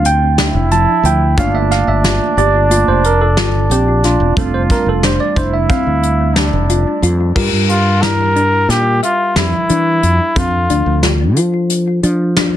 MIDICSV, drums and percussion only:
0, 0, Header, 1, 2, 480
1, 0, Start_track
1, 0, Tempo, 665927
1, 994, Time_signature, 9, 3, 24, 8
1, 9059, End_track
2, 0, Start_track
2, 0, Title_t, "Drums"
2, 34, Note_on_c, 9, 42, 59
2, 106, Note_off_c, 9, 42, 0
2, 275, Note_on_c, 9, 38, 108
2, 275, Note_on_c, 9, 42, 78
2, 347, Note_off_c, 9, 38, 0
2, 347, Note_off_c, 9, 42, 0
2, 514, Note_on_c, 9, 42, 57
2, 586, Note_off_c, 9, 42, 0
2, 754, Note_on_c, 9, 42, 53
2, 826, Note_off_c, 9, 42, 0
2, 992, Note_on_c, 9, 36, 101
2, 993, Note_on_c, 9, 42, 70
2, 1064, Note_off_c, 9, 36, 0
2, 1066, Note_off_c, 9, 42, 0
2, 1236, Note_on_c, 9, 38, 34
2, 1236, Note_on_c, 9, 42, 57
2, 1308, Note_off_c, 9, 38, 0
2, 1308, Note_off_c, 9, 42, 0
2, 1473, Note_on_c, 9, 38, 106
2, 1473, Note_on_c, 9, 42, 79
2, 1545, Note_off_c, 9, 38, 0
2, 1545, Note_off_c, 9, 42, 0
2, 1714, Note_on_c, 9, 42, 54
2, 1786, Note_off_c, 9, 42, 0
2, 1952, Note_on_c, 9, 42, 74
2, 2024, Note_off_c, 9, 42, 0
2, 2193, Note_on_c, 9, 42, 56
2, 2265, Note_off_c, 9, 42, 0
2, 2430, Note_on_c, 9, 38, 103
2, 2430, Note_on_c, 9, 42, 79
2, 2502, Note_off_c, 9, 38, 0
2, 2502, Note_off_c, 9, 42, 0
2, 2673, Note_on_c, 9, 42, 61
2, 2745, Note_off_c, 9, 42, 0
2, 2911, Note_on_c, 9, 38, 30
2, 2911, Note_on_c, 9, 42, 56
2, 2983, Note_off_c, 9, 38, 0
2, 2983, Note_off_c, 9, 42, 0
2, 3148, Note_on_c, 9, 36, 110
2, 3149, Note_on_c, 9, 42, 81
2, 3220, Note_off_c, 9, 36, 0
2, 3221, Note_off_c, 9, 42, 0
2, 3387, Note_on_c, 9, 36, 78
2, 3387, Note_on_c, 9, 42, 63
2, 3459, Note_off_c, 9, 36, 0
2, 3459, Note_off_c, 9, 42, 0
2, 3628, Note_on_c, 9, 38, 108
2, 3628, Note_on_c, 9, 42, 83
2, 3700, Note_off_c, 9, 38, 0
2, 3700, Note_off_c, 9, 42, 0
2, 3866, Note_on_c, 9, 36, 66
2, 3868, Note_on_c, 9, 42, 59
2, 3939, Note_off_c, 9, 36, 0
2, 3940, Note_off_c, 9, 42, 0
2, 4106, Note_on_c, 9, 36, 99
2, 4106, Note_on_c, 9, 42, 77
2, 4178, Note_off_c, 9, 36, 0
2, 4178, Note_off_c, 9, 42, 0
2, 4348, Note_on_c, 9, 42, 61
2, 4420, Note_off_c, 9, 42, 0
2, 4584, Note_on_c, 9, 38, 111
2, 4584, Note_on_c, 9, 42, 79
2, 4656, Note_off_c, 9, 38, 0
2, 4656, Note_off_c, 9, 42, 0
2, 4825, Note_on_c, 9, 42, 59
2, 4897, Note_off_c, 9, 42, 0
2, 5066, Note_on_c, 9, 42, 51
2, 5138, Note_off_c, 9, 42, 0
2, 5304, Note_on_c, 9, 36, 96
2, 5305, Note_on_c, 9, 49, 81
2, 5376, Note_off_c, 9, 36, 0
2, 5377, Note_off_c, 9, 49, 0
2, 5545, Note_on_c, 9, 42, 53
2, 5617, Note_off_c, 9, 42, 0
2, 5787, Note_on_c, 9, 38, 99
2, 5787, Note_on_c, 9, 42, 73
2, 5859, Note_off_c, 9, 38, 0
2, 5859, Note_off_c, 9, 42, 0
2, 6027, Note_on_c, 9, 42, 50
2, 6099, Note_off_c, 9, 42, 0
2, 6269, Note_on_c, 9, 38, 30
2, 6269, Note_on_c, 9, 42, 76
2, 6341, Note_off_c, 9, 38, 0
2, 6341, Note_off_c, 9, 42, 0
2, 6509, Note_on_c, 9, 42, 55
2, 6582, Note_off_c, 9, 42, 0
2, 6746, Note_on_c, 9, 38, 103
2, 6746, Note_on_c, 9, 42, 80
2, 6818, Note_off_c, 9, 38, 0
2, 6818, Note_off_c, 9, 42, 0
2, 6987, Note_on_c, 9, 42, 55
2, 7059, Note_off_c, 9, 42, 0
2, 7229, Note_on_c, 9, 42, 53
2, 7301, Note_off_c, 9, 42, 0
2, 7469, Note_on_c, 9, 36, 93
2, 7469, Note_on_c, 9, 42, 75
2, 7541, Note_off_c, 9, 36, 0
2, 7541, Note_off_c, 9, 42, 0
2, 7710, Note_on_c, 9, 42, 54
2, 7782, Note_off_c, 9, 42, 0
2, 7950, Note_on_c, 9, 38, 97
2, 7950, Note_on_c, 9, 42, 74
2, 8022, Note_off_c, 9, 38, 0
2, 8022, Note_off_c, 9, 42, 0
2, 8191, Note_on_c, 9, 42, 53
2, 8263, Note_off_c, 9, 42, 0
2, 8431, Note_on_c, 9, 42, 73
2, 8503, Note_off_c, 9, 42, 0
2, 8673, Note_on_c, 9, 42, 54
2, 8745, Note_off_c, 9, 42, 0
2, 8913, Note_on_c, 9, 38, 102
2, 8913, Note_on_c, 9, 42, 69
2, 8985, Note_off_c, 9, 38, 0
2, 8985, Note_off_c, 9, 42, 0
2, 9059, End_track
0, 0, End_of_file